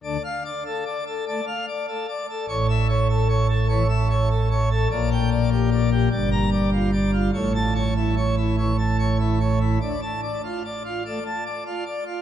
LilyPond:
<<
  \new Staff \with { instrumentName = "Pipe organ" } { \time 4/4 \key d \minor \tempo 4 = 98 \tuplet 3/2 { d''8 f''8 d''8 a'8 d''8 a'8 d''8 f''8 d''8 a'8 d''8 a'8 } | \tuplet 3/2 { cis''8 e''8 cis''8 a'8 cis''8 a'8 cis''8 e''8 cis''8 a'8 cis''8 a'8 } | \tuplet 3/2 { d''8 g''8 d''8 g'8 d''8 g'8 d''8 bes''8 d''8 f'8 d''8 f'8 } | \tuplet 3/2 { cis''8 a''8 cis''8 e'8 cis''8 e'8 cis''8 a''8 cis''8 e'8 cis''8 e'8 } |
\tuplet 3/2 { d''8 a''8 d''8 f'8 d''8 f'8 d''8 a''8 d''8 f'8 d''8 f'8 } | }
  \new Staff \with { instrumentName = "Pipe organ" } { \clef bass \time 4/4 \key d \minor << { d16 r4. r16 a16 r4. r16 | a,2 e16 r4. r16 | bes,2 g,2 | a,2 e16 r4. r16 |
d16 r4. r16 a16 r4. r16 | } \\ { d,16 r2. r8. | a,,1 | bes,,2 g,,2 | a,,1 |
d,16 r2. r8. | } >> }
>>